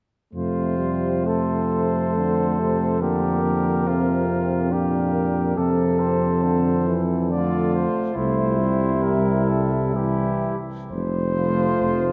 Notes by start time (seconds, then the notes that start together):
0.34 F2 C3 A3 F4 C5
0.78 G3
1.24 A3 A4 C5
2.16 D3
2.59 C3
3.01 D3 A#3 G4 A#4
3.43 D3
3.86 C3 C4 F4
4.70 A#2 D4 G4 A#4
5.14 A#2
5.56 F2 C3 C4 A4
6.00 C5
6.43 D3 C5
6.86 E3
7.30 D3 A3 F4 D5
7.74 C5
8.15 C2 C3 A3 E4 C5
8.59 G3
9.02 A#4
9.49 A4
9.94 E3 G3 E4 G4
10.91 F1 C5
11.36 F3 A3 F4
11.81 F1